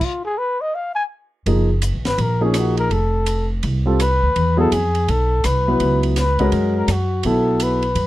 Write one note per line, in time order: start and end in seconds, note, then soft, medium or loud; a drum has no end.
0.01 0.25 F4 medium
0.01 kick medium
0.01 crash medium
0.25 0.40 G#4 medium
0.38 0.63 B4 medium
0.61 0.76 D#5 medium
0.75 0.95 F5 medium
0.96 1.04 G#5 medium
1.46 1.91 F#1 medium
1.46 1.67 F3 medium
1.46 1.67 A#3 soft
1.46 1.67 D#4 medium
1.46 1.68 G#4 medium
1.46 ride medium
1.82 hi-hat pedal medium
1.82 ride medium
1.94 2.06 A#1 medium
2.05 2.17 G1 medium
2.05 2.23 B4 medium
2.05 snare soft
2.05 ride soft
2.18 2.87 A#1 medium
2.18 2.45 A#4 medium
2.18 ride medium
2.41 2.88 F3 medium
2.41 2.88 A#3 medium
2.41 2.60 C#4 medium
2.41 2.88 D#4 medium
2.41 2.88 G#4 medium
2.54 cross-stick medium
2.54 hi-hat pedal medium
2.54 ride medium
2.58 2.78 F#4 medium
2.77 2.94 A#4 medium
2.77 ride soft
2.90 3.59 F1 medium
2.90 3.51 A4 medium
2.90 ride medium
3.26 hi-hat pedal medium
3.26 ride medium
3.63 4.18 C2 medium
3.63 ride medium
3.86 3.98 G3 medium
3.86 3.98 C4 medium
3.86 3.98 F4 medium
3.86 3.98 A4 medium
4.00 4.56 B4 medium
4.00 cross-stick medium
4.00 hi-hat pedal medium
4.00 ride medium
4.23 4.35 D2 medium
4.36 4.69 E2 medium
4.36 ride medium
4.57 4.70 F#3 medium
4.57 4.70 B3 medium
4.57 4.70 E4 medium
4.57 4.70 G#4 medium
4.57 4.75 A4 medium
4.72 5.05 F2 medium
4.72 5.11 G#4 medium
4.72 hi-hat pedal soft
4.72 ride medium
4.95 ride soft
5.08 5.42 B1 medium
5.08 5.47 A4 medium
5.08 ride medium
5.44 5.78 C2 medium
5.44 6.04 B4 medium
5.44 cross-stick medium
5.44 hi-hat pedal medium
5.44 ride medium
5.67 6.14 F#3 medium
5.67 6.14 B3 medium
5.67 6.14 E4 medium
5.67 6.14 B4 medium
5.80 6.49 C#2 medium
5.80 ride medium
6.03 ride soft
6.16 6.51 B4 medium
6.16 snare soft
6.16 hi-hat pedal soft
6.16 ride medium
6.39 6.86 G#3 medium
6.39 6.86 C#4 medium
6.39 6.86 F#4 medium
6.39 6.86 A#4 medium
6.39 kick medium
6.39 ride soft
6.52 6.86 F#2 medium
6.52 ride medium
6.77 6.93 A#4 medium
6.88 7.22 F#2 medium
6.88 7.29 F#4 medium
6.88 cross-stick medium
6.88 hi-hat pedal medium
6.88 ride medium
7.23 7.93 B1 medium
7.23 7.79 F#3 medium
7.23 7.79 B3 medium
7.23 7.79 E4 medium
7.23 7.79 A4 medium
7.23 7.64 A4 medium
7.23 ride medium
7.60 8.07 B4 medium
7.60 hi-hat pedal medium
7.60 ride medium
7.83 ride soft
7.95 8.07 F#2 medium
7.95 ride medium